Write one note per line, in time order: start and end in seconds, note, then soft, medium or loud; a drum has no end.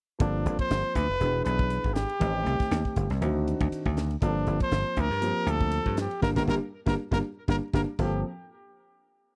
0.19 0.40 G1 medium
0.19 1.03 F3 medium
0.19 1.03 A#3 medium
0.19 1.03 C4 medium
0.19 0.57 D4 medium
0.19 1.03 A4 medium
0.19 kick medium
0.19 hi-hat pedal medium
0.19 ride medium
0.46 0.56 G1 medium
0.46 hi-hat pedal medium
0.46 ride medium
0.59 0.97 C5 medium
0.59 kick medium
0.59 ride medium
0.70 0.81 G1 medium
0.70 snare medium
0.70 hi-hat pedal medium
0.70 ride medium
0.95 1.06 D2 medium
0.95 1.44 B4 loud
0.95 kick medium
0.95 hi-hat pedal medium
0.95 ride medium
1.09 1.19 F1 medium
1.20 1.41 E1 medium
1.20 2.03 E3 medium
1.20 2.04 B3 medium
1.20 2.04 D4 medium
1.20 2.04 G#4 medium
1.20 hi-hat pedal medium
1.20 ride medium
1.45 1.77 B1 medium
1.45 1.95 B4 medium
1.45 hi-hat pedal medium
1.45 ride medium
1.59 kick medium
1.70 hi-hat pedal medium
1.70 ride medium
1.84 2.04 G#1 medium
1.84 kick medium
1.94 3.20 G4 medium
1.94 snare medium
1.94 hi-hat pedal medium
1.94 ride medium
2.09 ride medium
2.19 2.41 A1 medium
2.19 3.03 D#3 medium
2.19 3.04 A3 soft
2.19 3.04 C4 medium
2.19 3.04 G4 medium
2.19 kick loud
2.19 hi-hat pedal medium
2.19 ride medium
2.46 2.57 C2 medium
2.46 hi-hat pedal medium
2.46 ride medium
2.60 kick medium
2.60 snare soft
2.60 ride medium
2.71 2.82 D#2 medium
2.71 snare medium
2.71 hi-hat pedal medium
2.71 ride medium
2.85 kick medium
2.96 3.07 G1 medium
2.96 kick medium
2.96 hi-hat pedal medium
2.96 ride soft
3.10 3.19 C2 medium
3.10 snare soft
3.10 ride soft
3.21 3.53 D2 medium
3.21 4.04 D#3 medium
3.21 4.05 C4 medium
3.21 4.05 D4 medium
3.21 4.05 F#4 medium
3.21 hi-hat pedal medium
3.21 ride medium
3.47 hi-hat pedal medium
3.47 ride medium
3.61 3.70 D2 medium
3.61 kick medium
3.61 ride medium
3.72 muted slap bass stroke soft
3.72 hi-hat pedal medium
3.72 ride medium
3.86 4.15 D2 medium
3.86 kick medium
3.97 snare medium
3.97 hi-hat pedal medium
3.97 ride medium
4.11 ride medium
4.22 4.42 G1 medium
4.22 5.05 F3 medium
4.22 5.05 A#3 medium
4.22 5.05 C4 medium
4.22 4.58 D4 medium
4.22 5.06 A4 medium
4.22 kick loud
4.22 hi-hat pedal medium
4.22 ride medium
4.47 4.58 G1 medium
4.47 hi-hat pedal medium
4.47 ride medium
4.60 5.02 C5 loud
4.60 kick medium
4.60 ride medium
4.71 4.83 G1 medium
4.71 snare medium
4.71 hi-hat pedal medium
4.71 ride medium
4.96 5.08 D2 medium
4.96 5.52 A#4 loud
4.96 kick medium
4.96 hi-hat pedal medium
4.96 ride medium
5.10 5.31 G2 medium
5.10 snare soft
5.21 6.05 F3 medium
5.21 6.05 A#3 medium
5.21 6.05 C4 medium
5.21 6.05 G4 medium
5.21 hi-hat pedal medium
5.21 ride medium
5.46 5.78 D2 medium
5.46 5.99 A4 medium
5.46 hi-hat pedal medium
5.46 ride medium
5.61 kick medium
5.71 hi-hat pedal medium
5.71 ride medium
5.86 6.06 G2 medium
5.86 kick medium
5.97 6.22 G4 medium
5.97 snare loud
5.97 hi-hat pedal medium
5.97 ride medium
6.11 ride medium
6.21 6.33 G1 medium
6.21 6.31 G3 medium
6.21 6.31 A#3 medium
6.21 6.31 D4 medium
6.21 6.29 A#4 medium
6.21 kick medium
6.21 snare medium
6.35 6.45 G1 medium
6.35 6.43 G3 medium
6.35 6.43 A#3 medium
6.35 6.43 D4 medium
6.35 6.43 A#4 medium
6.35 kick medium
6.35 snare medium
6.47 6.58 G1 medium
6.47 6.56 G3 loud
6.47 6.56 A#3 medium
6.47 6.56 D4 medium
6.47 6.55 A#4 medium
6.47 kick medium
6.47 snare medium
6.86 6.95 G1 medium
6.86 6.94 G3 medium
6.86 6.93 A#3 medium
6.86 6.94 D4 medium
6.86 6.94 A#4 medium
6.86 kick medium
6.86 snare medium
7.11 7.20 G1 medium
7.11 7.19 G3 medium
7.11 7.19 A#3 medium
7.11 7.19 D4 medium
7.11 7.19 A#4 medium
7.11 kick medium
7.11 snare medium
7.48 7.58 G1 medium
7.48 7.57 G3 medium
7.48 7.57 A#3 medium
7.48 7.57 D4 medium
7.48 7.56 A#4 medium
7.48 kick medium
7.48 snare medium
7.73 7.84 G1 medium
7.73 7.82 G3 medium
7.73 7.82 A#3 medium
7.73 7.82 D4 medium
7.73 7.81 A#4 medium
7.73 kick medium
7.73 snare medium
7.99 8.22 G1 medium
7.99 8.22 F3 medium
7.99 8.22 A#3 medium
7.99 8.22 C4 medium
7.99 8.23 G4 medium
7.99 8.22 A4 medium
7.99 kick medium
7.99 crash medium